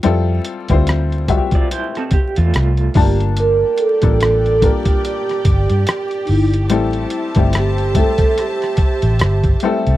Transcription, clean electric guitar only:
X:1
M:4/4
L:1/16
Q:"Swing 16ths" 1/4=72
K:Gdor
V:1 name="Clean electric guitar"
z6 z [Fd] [Ec] [CA] G [A,F]3 z2 | z16 | z16 |]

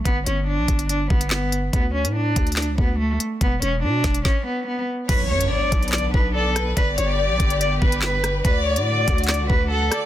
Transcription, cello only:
X:1
M:4/4
L:1/8
Q:1/4=143
K:Bm
V:1 name="Cello"
B, C D2 D B, B, z | B, C D2 D B, A, z | B, C D2 C B, B, z | B c d2 d B A z |
B c d2 d B B z | B c d2 d B A z |]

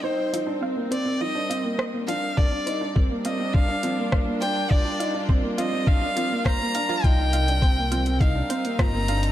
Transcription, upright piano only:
X:1
M:4/4
L:1/16
Q:1/4=103
K:Gphr
V:1 name="Upright piano"
E E E D C B, C C E D C B,2 B, D2 | D D E D C B, C C D D C B,2 B, D2 | D D E D C B, C C D D C B,2 B, D2 | E E E D C B, C C E D C B,2 B, D2 |]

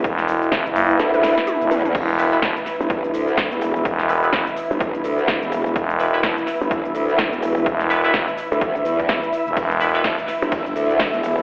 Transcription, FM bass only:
X:1
M:4/4
L:1/16
Q:"Swing 16ths" 1/4=126
K:Em
V:1 name="FM bass" clef=bass
E,,,4 E,,, F,,,3 z4 z E,,, z2 | E,,,4 E,,, z8 z3 | E,,,4 E,,, z8 z3 | E,,,4 E,,, z8 z3 |
E,,,4 E,,, z8 z2 E,,, | E,,,4 E,,, z8 z3 |]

